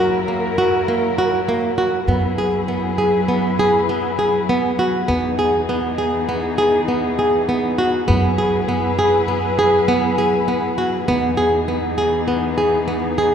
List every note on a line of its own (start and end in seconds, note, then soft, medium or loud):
0.00 2.04 F#2 medium
0.00 2.05 F#3 medium
0.00 2.05 E4 medium
0.00 0.20 F#4 medium
0.00 2.05 A#4 medium
0.28 0.50 A#3 medium
0.58 0.80 F#4 medium
0.88 1.10 A#3 medium
1.18 1.40 F#4 medium
1.49 1.70 A#3 medium
1.78 2.00 F#4 medium
2.08 5.04 F#2 medium
2.08 5.06 F#3 medium
2.08 2.30 B3 medium
2.08 5.06 E4 medium
2.08 5.06 G#4 soft
2.08 5.06 B4 medium
2.38 2.60 G#4 medium
2.68 2.90 B3 medium
2.98 3.20 G#4 medium
3.28 3.50 B3 medium
3.59 3.81 G#4 medium
3.89 4.11 B3 medium
4.19 4.40 G#4 medium
4.49 4.71 B3 medium
4.79 5.01 F#4 medium
5.08 8.04 E2 medium
5.08 8.06 E3 medium
5.08 5.30 B3 medium
5.08 8.06 B3 medium
5.08 8.06 D#4 medium
5.08 8.06 G#4 medium
5.39 5.60 G#4 medium
5.69 5.91 B3 medium
5.98 6.20 G#4 medium
6.29 6.50 B3 medium
6.58 6.80 G#4 medium
6.88 7.10 B3 medium
7.19 7.40 G#4 medium
7.49 7.70 B3 medium
7.78 8.00 F#4 medium
8.07 11.04 F#2 medium
8.07 11.05 F#3 medium
8.07 8.30 B3 medium
8.07 11.04 E4 medium
8.07 11.05 G#4 medium
8.07 11.05 B4 medium
8.38 8.60 G#4 medium
8.69 8.90 B3 medium
8.99 9.20 G#4 medium
9.28 9.50 B3 medium
9.59 9.80 G#4 medium
9.88 10.10 B3 medium
10.18 10.40 G#4 medium
10.48 10.70 B3 medium
10.78 11.00 F#4 medium
11.08 13.35 E2 medium
11.08 13.35 E3 medium
11.08 11.30 B3 medium
11.08 13.35 B3 medium
11.08 13.35 D#4 medium
11.08 13.35 G#4 medium
11.37 11.59 G#4 medium
11.68 11.90 B3 medium
11.98 12.19 G#4 medium
12.28 12.49 B3 medium
12.58 12.79 G#4 medium
12.88 13.09 B3 medium
13.18 13.35 G#4 medium